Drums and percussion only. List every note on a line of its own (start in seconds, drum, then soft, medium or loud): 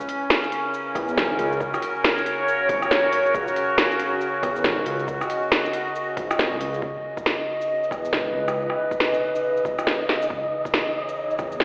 0.00 shaker medium
0.09 open hi-hat medium
0.30 snare loud
0.30 shaker medium
0.44 shaker soft
0.52 open hi-hat medium
0.74 shaker medium
0.95 kick loud
0.95 cross-stick soft
0.95 open hi-hat medium
1.08 shaker medium
1.18 snare loud
1.18 shaker medium
1.39 open hi-hat medium
1.52 shaker soft
1.61 kick loud
1.61 shaker medium
1.74 cross-stick medium
1.74 shaker medium
1.82 open hi-hat medium
2.04 snare loud
2.04 shaker medium
2.17 shaker soft
2.26 open hi-hat medium
2.48 shaker medium
2.69 kick loud
2.69 open hi-hat medium
2.82 cross-stick medium
2.82 shaker medium
2.91 snare loud
2.91 shaker medium
3.13 open hi-hat medium
3.26 shaker soft
3.35 kick loud
3.35 shaker medium
3.48 shaker medium
3.56 open hi-hat medium
3.78 snare loud
3.78 shaker medium
3.91 shaker soft
4.00 open hi-hat medium
4.21 shaker medium
4.43 kick loud
4.43 cross-stick soft
4.43 open hi-hat medium
4.56 shaker medium
4.64 snare loud
4.64 shaker medium
4.86 open hi-hat medium
4.99 shaker soft
5.08 kick loud
5.08 shaker medium
5.21 cross-stick medium
5.21 shaker medium
5.30 open hi-hat medium
5.52 snare loud
5.52 shaker medium
5.65 shaker soft
5.73 open hi-hat medium
5.95 shaker medium
6.17 kick loud
6.17 open hi-hat medium
6.31 cross-stick medium
6.31 shaker medium
6.39 snare loud
6.39 shaker medium
6.61 open hi-hat medium
6.74 shaker soft
6.82 kick loud
7.17 kick loud
7.17 shaker medium
7.26 snare loud
7.61 shaker medium
7.84 shaker soft
7.91 kick loud
7.91 cross-stick soft
7.91 shaker soft
8.05 shaker medium
8.13 snare medium
8.48 cross-stick medium
8.48 shaker medium
8.70 cross-stick soft
8.91 kick loud
8.91 shaker medium
9.00 snare loud
9.14 shaker soft
9.35 shaker medium
9.57 shaker soft
9.65 kick loud
9.65 shaker soft
9.79 cross-stick medium
9.79 shaker medium
9.87 snare loud
10.09 snare medium
10.22 shaker medium
10.30 kick loud
10.65 kick loud
10.65 shaker medium
10.74 snare loud
11.09 shaker medium
11.31 shaker soft
11.39 kick loud
11.39 cross-stick soft
11.39 shaker soft
11.52 shaker medium
11.60 snare loud